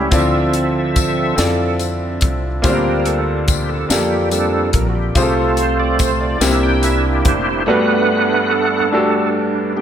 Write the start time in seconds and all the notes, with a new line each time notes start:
Already playing: A2 C#4 E4 G4 A4 E5
0.11 D2 D3 F3 C4 D4 E4 F4 A4 D5 E5, kick, closed hi-hat, tambourine
0.53 A4, closed hi-hat
0.96 kick, closed hi-hat, tambourine
1.36 F2 C4 E4 F4 A4 D5, snare, closed hi-hat, tambourine
1.80 closed hi-hat, tambourine
2.21 C2, kick, closed hi-hat
2.62 D2 D3 G3 A#3 C4 C#4 D4 F4 G4 A#4 C5, kick, closed hi-hat, tambourine
2.69 D4
3.00 A#4
3.05 A4, closed hi-hat
3.48 G4, kick, closed hi-hat, tambourine
3.69 A4
3.89 F2 A#3 D4 F4 G4 A4, snare, closed hi-hat, tambourine
4.31 G3 C4 D4 A4, closed hi-hat, tambourine
4.73 A#1 A#4, kick, closed hi-hat
4.89 F#4
4.95 G4
5.15 C2 C3 F3 A3 C4 F4 G#4 C5, kick, closed hi-hat, tambourine
5.22 A4
5.38 A4
5.57 C5, closed hi-hat
5.80 D5
5.99 C5, kick, closed hi-hat, tambourine
6.21 D5
6.40 C2 C3 G3 A#3 C4 D4 D#4 E4 G4 C5 E5, snare, closed hi-hat, tambourine
6.48 E4
6.63 G5
6.83 E5, closed hi-hat, tambourine
7.04 G4
7.25 F1 C5, kick, closed hi-hat
7.66 G2 A3 B3 D4 F#4 G4 B4 F#5
8.51 D4 A4
8.92 A3 D4 F#4 G4 A4
9.77 B3 D4 G4